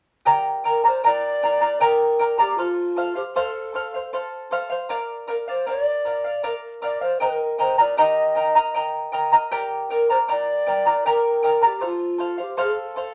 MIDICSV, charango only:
0, 0, Header, 1, 2, 480
1, 0, Start_track
1, 0, Key_signature, -2, "minor"
1, 0, Tempo, 769231
1, 167, Time_signature, 3, 2, 24, 8
1, 8200, End_track
2, 0, Start_track
2, 0, Title_t, "Charango"
2, 0, Program_c, 0, 24
2, 159, Note_on_c, 0, 67, 58
2, 161, Note_on_c, 0, 79, 73
2, 163, Note_on_c, 0, 70, 70
2, 166, Note_on_c, 0, 74, 72
2, 166, Note_on_c, 0, 82, 72
2, 392, Note_off_c, 0, 79, 0
2, 395, Note_off_c, 0, 70, 0
2, 399, Note_on_c, 0, 79, 40
2, 400, Note_off_c, 0, 74, 0
2, 400, Note_off_c, 0, 82, 0
2, 402, Note_on_c, 0, 70, 45
2, 403, Note_off_c, 0, 67, 0
2, 407, Note_on_c, 0, 74, 51
2, 408, Note_on_c, 0, 82, 50
2, 516, Note_off_c, 0, 82, 0
2, 521, Note_off_c, 0, 74, 0
2, 523, Note_off_c, 0, 70, 0
2, 523, Note_on_c, 0, 82, 48
2, 524, Note_off_c, 0, 79, 0
2, 528, Note_on_c, 0, 74, 40
2, 530, Note_on_c, 0, 70, 36
2, 640, Note_off_c, 0, 70, 0
2, 644, Note_off_c, 0, 74, 0
2, 646, Note_off_c, 0, 82, 0
2, 647, Note_on_c, 0, 70, 57
2, 647, Note_on_c, 0, 79, 49
2, 651, Note_on_c, 0, 74, 53
2, 653, Note_on_c, 0, 82, 54
2, 881, Note_off_c, 0, 79, 0
2, 884, Note_off_c, 0, 70, 0
2, 886, Note_off_c, 0, 74, 0
2, 888, Note_off_c, 0, 82, 0
2, 888, Note_on_c, 0, 79, 47
2, 891, Note_on_c, 0, 70, 44
2, 893, Note_on_c, 0, 74, 51
2, 895, Note_on_c, 0, 82, 52
2, 995, Note_off_c, 0, 82, 0
2, 999, Note_off_c, 0, 74, 0
2, 1003, Note_on_c, 0, 82, 43
2, 1005, Note_off_c, 0, 70, 0
2, 1007, Note_on_c, 0, 74, 46
2, 1009, Note_off_c, 0, 79, 0
2, 1012, Note_on_c, 0, 70, 41
2, 1120, Note_off_c, 0, 70, 0
2, 1123, Note_off_c, 0, 82, 0
2, 1124, Note_off_c, 0, 74, 0
2, 1124, Note_on_c, 0, 67, 61
2, 1128, Note_on_c, 0, 70, 71
2, 1129, Note_on_c, 0, 79, 70
2, 1131, Note_on_c, 0, 82, 69
2, 1132, Note_on_c, 0, 74, 70
2, 1361, Note_off_c, 0, 79, 0
2, 1362, Note_off_c, 0, 70, 0
2, 1367, Note_off_c, 0, 67, 0
2, 1368, Note_off_c, 0, 74, 0
2, 1368, Note_off_c, 0, 82, 0
2, 1368, Note_on_c, 0, 79, 50
2, 1370, Note_on_c, 0, 70, 53
2, 1375, Note_on_c, 0, 74, 55
2, 1376, Note_on_c, 0, 82, 52
2, 1478, Note_off_c, 0, 82, 0
2, 1485, Note_on_c, 0, 82, 44
2, 1486, Note_off_c, 0, 74, 0
2, 1488, Note_off_c, 0, 70, 0
2, 1489, Note_off_c, 0, 79, 0
2, 1494, Note_on_c, 0, 74, 47
2, 1496, Note_on_c, 0, 70, 40
2, 1606, Note_off_c, 0, 74, 0
2, 1608, Note_off_c, 0, 82, 0
2, 1609, Note_on_c, 0, 69, 42
2, 1612, Note_on_c, 0, 72, 46
2, 1613, Note_off_c, 0, 70, 0
2, 1616, Note_on_c, 0, 77, 51
2, 1841, Note_off_c, 0, 69, 0
2, 1846, Note_off_c, 0, 72, 0
2, 1849, Note_on_c, 0, 69, 49
2, 1850, Note_off_c, 0, 77, 0
2, 1854, Note_on_c, 0, 72, 50
2, 1858, Note_on_c, 0, 77, 54
2, 1960, Note_off_c, 0, 77, 0
2, 1965, Note_off_c, 0, 72, 0
2, 1967, Note_on_c, 0, 77, 48
2, 1970, Note_off_c, 0, 69, 0
2, 1974, Note_on_c, 0, 72, 41
2, 2089, Note_off_c, 0, 72, 0
2, 2089, Note_off_c, 0, 77, 0
2, 2094, Note_on_c, 0, 69, 64
2, 2097, Note_on_c, 0, 72, 72
2, 2099, Note_on_c, 0, 77, 71
2, 2326, Note_off_c, 0, 69, 0
2, 2331, Note_off_c, 0, 72, 0
2, 2333, Note_on_c, 0, 69, 50
2, 2335, Note_off_c, 0, 77, 0
2, 2339, Note_on_c, 0, 72, 42
2, 2343, Note_on_c, 0, 77, 46
2, 2451, Note_off_c, 0, 77, 0
2, 2452, Note_off_c, 0, 69, 0
2, 2455, Note_off_c, 0, 72, 0
2, 2458, Note_on_c, 0, 77, 46
2, 2466, Note_on_c, 0, 72, 40
2, 2572, Note_off_c, 0, 72, 0
2, 2575, Note_off_c, 0, 77, 0
2, 2577, Note_on_c, 0, 69, 53
2, 2580, Note_on_c, 0, 72, 54
2, 2583, Note_on_c, 0, 77, 53
2, 2806, Note_off_c, 0, 69, 0
2, 2813, Note_off_c, 0, 72, 0
2, 2813, Note_on_c, 0, 69, 52
2, 2816, Note_off_c, 0, 77, 0
2, 2821, Note_on_c, 0, 72, 63
2, 2823, Note_on_c, 0, 77, 67
2, 2923, Note_off_c, 0, 77, 0
2, 2928, Note_off_c, 0, 72, 0
2, 2930, Note_on_c, 0, 77, 57
2, 2933, Note_off_c, 0, 69, 0
2, 2940, Note_on_c, 0, 72, 44
2, 3051, Note_off_c, 0, 77, 0
2, 3052, Note_on_c, 0, 70, 59
2, 3056, Note_off_c, 0, 72, 0
2, 3057, Note_on_c, 0, 74, 74
2, 3059, Note_on_c, 0, 77, 80
2, 3284, Note_off_c, 0, 70, 0
2, 3288, Note_off_c, 0, 74, 0
2, 3291, Note_on_c, 0, 70, 50
2, 3294, Note_off_c, 0, 77, 0
2, 3296, Note_on_c, 0, 74, 47
2, 3302, Note_on_c, 0, 77, 45
2, 3409, Note_off_c, 0, 77, 0
2, 3412, Note_off_c, 0, 70, 0
2, 3414, Note_off_c, 0, 74, 0
2, 3417, Note_on_c, 0, 77, 48
2, 3424, Note_on_c, 0, 74, 36
2, 3531, Note_off_c, 0, 74, 0
2, 3533, Note_on_c, 0, 70, 55
2, 3535, Note_off_c, 0, 77, 0
2, 3539, Note_on_c, 0, 74, 57
2, 3542, Note_on_c, 0, 77, 63
2, 3768, Note_off_c, 0, 70, 0
2, 3776, Note_off_c, 0, 74, 0
2, 3776, Note_on_c, 0, 70, 49
2, 3778, Note_off_c, 0, 77, 0
2, 3782, Note_on_c, 0, 74, 50
2, 3787, Note_on_c, 0, 77, 50
2, 3888, Note_off_c, 0, 77, 0
2, 3894, Note_off_c, 0, 70, 0
2, 3896, Note_on_c, 0, 77, 48
2, 3897, Note_off_c, 0, 74, 0
2, 3906, Note_on_c, 0, 74, 41
2, 4010, Note_off_c, 0, 74, 0
2, 4011, Note_off_c, 0, 77, 0
2, 4014, Note_on_c, 0, 70, 66
2, 4017, Note_on_c, 0, 74, 72
2, 4018, Note_on_c, 0, 77, 68
2, 4247, Note_off_c, 0, 70, 0
2, 4250, Note_off_c, 0, 74, 0
2, 4254, Note_on_c, 0, 70, 50
2, 4256, Note_off_c, 0, 77, 0
2, 4258, Note_on_c, 0, 74, 60
2, 4264, Note_on_c, 0, 77, 52
2, 4367, Note_off_c, 0, 77, 0
2, 4373, Note_off_c, 0, 70, 0
2, 4375, Note_off_c, 0, 74, 0
2, 4375, Note_on_c, 0, 77, 47
2, 4382, Note_on_c, 0, 74, 38
2, 4490, Note_off_c, 0, 77, 0
2, 4493, Note_on_c, 0, 79, 53
2, 4497, Note_off_c, 0, 74, 0
2, 4497, Note_on_c, 0, 70, 56
2, 4501, Note_on_c, 0, 75, 46
2, 4503, Note_on_c, 0, 82, 58
2, 4724, Note_off_c, 0, 79, 0
2, 4727, Note_off_c, 0, 70, 0
2, 4730, Note_off_c, 0, 75, 0
2, 4732, Note_on_c, 0, 79, 46
2, 4733, Note_off_c, 0, 82, 0
2, 4734, Note_on_c, 0, 70, 42
2, 4738, Note_on_c, 0, 75, 51
2, 4740, Note_on_c, 0, 82, 54
2, 4847, Note_off_c, 0, 82, 0
2, 4850, Note_off_c, 0, 75, 0
2, 4852, Note_off_c, 0, 79, 0
2, 4854, Note_off_c, 0, 70, 0
2, 4854, Note_on_c, 0, 82, 45
2, 4857, Note_on_c, 0, 75, 44
2, 4862, Note_on_c, 0, 70, 41
2, 4972, Note_off_c, 0, 70, 0
2, 4972, Note_off_c, 0, 75, 0
2, 4974, Note_off_c, 0, 82, 0
2, 4975, Note_on_c, 0, 67, 60
2, 4978, Note_on_c, 0, 79, 64
2, 4979, Note_on_c, 0, 70, 62
2, 4980, Note_on_c, 0, 75, 70
2, 4980, Note_on_c, 0, 82, 73
2, 5203, Note_off_c, 0, 79, 0
2, 5206, Note_off_c, 0, 70, 0
2, 5209, Note_off_c, 0, 75, 0
2, 5210, Note_on_c, 0, 79, 46
2, 5212, Note_off_c, 0, 82, 0
2, 5214, Note_off_c, 0, 67, 0
2, 5214, Note_on_c, 0, 70, 46
2, 5216, Note_on_c, 0, 75, 51
2, 5220, Note_on_c, 0, 82, 53
2, 5329, Note_off_c, 0, 82, 0
2, 5332, Note_off_c, 0, 79, 0
2, 5333, Note_off_c, 0, 70, 0
2, 5335, Note_off_c, 0, 75, 0
2, 5336, Note_on_c, 0, 82, 50
2, 5342, Note_on_c, 0, 75, 44
2, 5345, Note_on_c, 0, 70, 34
2, 5452, Note_off_c, 0, 70, 0
2, 5453, Note_off_c, 0, 75, 0
2, 5455, Note_off_c, 0, 82, 0
2, 5456, Note_on_c, 0, 79, 48
2, 5459, Note_on_c, 0, 70, 50
2, 5460, Note_on_c, 0, 75, 53
2, 5466, Note_on_c, 0, 82, 51
2, 5684, Note_off_c, 0, 79, 0
2, 5689, Note_off_c, 0, 70, 0
2, 5691, Note_on_c, 0, 79, 55
2, 5692, Note_off_c, 0, 75, 0
2, 5694, Note_off_c, 0, 82, 0
2, 5697, Note_on_c, 0, 70, 65
2, 5699, Note_on_c, 0, 75, 57
2, 5702, Note_on_c, 0, 82, 55
2, 5808, Note_off_c, 0, 82, 0
2, 5812, Note_off_c, 0, 79, 0
2, 5815, Note_off_c, 0, 70, 0
2, 5815, Note_on_c, 0, 82, 48
2, 5816, Note_off_c, 0, 75, 0
2, 5823, Note_on_c, 0, 75, 51
2, 5825, Note_on_c, 0, 70, 47
2, 5932, Note_off_c, 0, 70, 0
2, 5934, Note_off_c, 0, 82, 0
2, 5936, Note_on_c, 0, 67, 66
2, 5937, Note_off_c, 0, 75, 0
2, 5938, Note_on_c, 0, 79, 76
2, 5939, Note_on_c, 0, 70, 70
2, 5940, Note_on_c, 0, 74, 77
2, 5943, Note_on_c, 0, 82, 67
2, 6171, Note_off_c, 0, 79, 0
2, 6173, Note_off_c, 0, 70, 0
2, 6174, Note_off_c, 0, 67, 0
2, 6176, Note_off_c, 0, 74, 0
2, 6178, Note_off_c, 0, 82, 0
2, 6178, Note_on_c, 0, 79, 44
2, 6180, Note_on_c, 0, 70, 50
2, 6185, Note_on_c, 0, 74, 50
2, 6187, Note_on_c, 0, 82, 44
2, 6291, Note_off_c, 0, 82, 0
2, 6295, Note_off_c, 0, 79, 0
2, 6296, Note_off_c, 0, 74, 0
2, 6297, Note_off_c, 0, 70, 0
2, 6299, Note_on_c, 0, 82, 45
2, 6303, Note_on_c, 0, 74, 37
2, 6307, Note_on_c, 0, 70, 38
2, 6410, Note_off_c, 0, 70, 0
2, 6413, Note_off_c, 0, 74, 0
2, 6414, Note_off_c, 0, 82, 0
2, 6415, Note_on_c, 0, 79, 53
2, 6417, Note_on_c, 0, 70, 55
2, 6421, Note_on_c, 0, 74, 57
2, 6421, Note_on_c, 0, 82, 60
2, 6647, Note_off_c, 0, 79, 0
2, 6651, Note_off_c, 0, 70, 0
2, 6654, Note_off_c, 0, 74, 0
2, 6654, Note_on_c, 0, 79, 52
2, 6657, Note_off_c, 0, 82, 0
2, 6658, Note_on_c, 0, 70, 45
2, 6661, Note_on_c, 0, 74, 50
2, 6664, Note_on_c, 0, 82, 49
2, 6768, Note_off_c, 0, 82, 0
2, 6771, Note_off_c, 0, 74, 0
2, 6773, Note_off_c, 0, 79, 0
2, 6775, Note_off_c, 0, 70, 0
2, 6775, Note_on_c, 0, 82, 45
2, 6779, Note_on_c, 0, 74, 42
2, 6783, Note_on_c, 0, 70, 39
2, 6894, Note_off_c, 0, 70, 0
2, 6894, Note_off_c, 0, 82, 0
2, 6896, Note_off_c, 0, 74, 0
2, 6898, Note_on_c, 0, 67, 67
2, 6900, Note_on_c, 0, 79, 64
2, 6902, Note_on_c, 0, 70, 69
2, 6904, Note_on_c, 0, 74, 62
2, 6905, Note_on_c, 0, 82, 76
2, 7122, Note_off_c, 0, 79, 0
2, 7128, Note_off_c, 0, 70, 0
2, 7130, Note_on_c, 0, 79, 47
2, 7131, Note_off_c, 0, 74, 0
2, 7132, Note_off_c, 0, 82, 0
2, 7135, Note_off_c, 0, 67, 0
2, 7136, Note_on_c, 0, 70, 53
2, 7139, Note_on_c, 0, 74, 50
2, 7140, Note_on_c, 0, 82, 57
2, 7242, Note_off_c, 0, 82, 0
2, 7246, Note_off_c, 0, 74, 0
2, 7250, Note_on_c, 0, 82, 43
2, 7251, Note_off_c, 0, 70, 0
2, 7251, Note_off_c, 0, 79, 0
2, 7254, Note_on_c, 0, 74, 43
2, 7258, Note_on_c, 0, 70, 37
2, 7363, Note_off_c, 0, 70, 0
2, 7365, Note_on_c, 0, 69, 47
2, 7370, Note_on_c, 0, 72, 48
2, 7371, Note_off_c, 0, 82, 0
2, 7373, Note_off_c, 0, 74, 0
2, 7374, Note_on_c, 0, 77, 53
2, 7594, Note_off_c, 0, 69, 0
2, 7600, Note_off_c, 0, 72, 0
2, 7602, Note_on_c, 0, 69, 41
2, 7605, Note_off_c, 0, 77, 0
2, 7607, Note_on_c, 0, 72, 52
2, 7613, Note_on_c, 0, 77, 47
2, 7715, Note_off_c, 0, 77, 0
2, 7720, Note_off_c, 0, 72, 0
2, 7723, Note_on_c, 0, 77, 50
2, 7727, Note_off_c, 0, 69, 0
2, 7731, Note_on_c, 0, 72, 39
2, 7841, Note_off_c, 0, 72, 0
2, 7844, Note_off_c, 0, 77, 0
2, 7844, Note_on_c, 0, 69, 65
2, 7848, Note_on_c, 0, 72, 70
2, 7851, Note_on_c, 0, 77, 75
2, 8079, Note_off_c, 0, 69, 0
2, 8084, Note_off_c, 0, 72, 0
2, 8086, Note_on_c, 0, 69, 43
2, 8088, Note_off_c, 0, 77, 0
2, 8092, Note_on_c, 0, 72, 47
2, 8096, Note_on_c, 0, 77, 51
2, 8196, Note_off_c, 0, 77, 0
2, 8200, Note_off_c, 0, 69, 0
2, 8200, Note_off_c, 0, 72, 0
2, 8200, End_track
0, 0, End_of_file